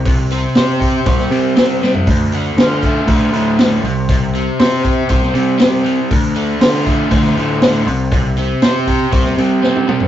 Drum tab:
HH |o-o-o-o-o-o-o---|o-o-o-o-o-o-o-o-|o-o-o-o-o-o-o-o-|o-o-o-o-o-o-o-o-|
SD |----o----o--o-o-|----o-------o---|----o----o--o---|----o----o--o---|
T1 |----------------|----------------|----------------|----------------|
T2 |----------------|----------------|----------------|----------------|
FT |---------------o|----------------|----------------|----------------|
BD |o-----o-o-------|o-----o-o-------|o-----o-o-------|o-----o-o-------|

HH |o-o-o-o-o-o-----|
SD |----o----o--o---|
T1 |-------------o--|
T2 |--------------o-|
FT |---------------o|
BD |o-----o-o-------|